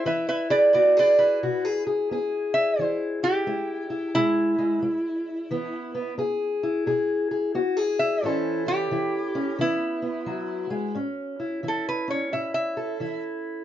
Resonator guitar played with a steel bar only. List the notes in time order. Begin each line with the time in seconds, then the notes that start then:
0.06 B4 E5
0.29 B4 E5
0.50 B4 D5
0.73 B4 D5
0.99 B4 D5
1.19 B4
2.54 E5
2.81 C5
3.24 G4
4.15 E4
7.99 E5
8.25 C5
8.68 G4
9.61 E4
11.68 A4
11.89 B4
12.10 C#5
12.33 E5
12.54 E5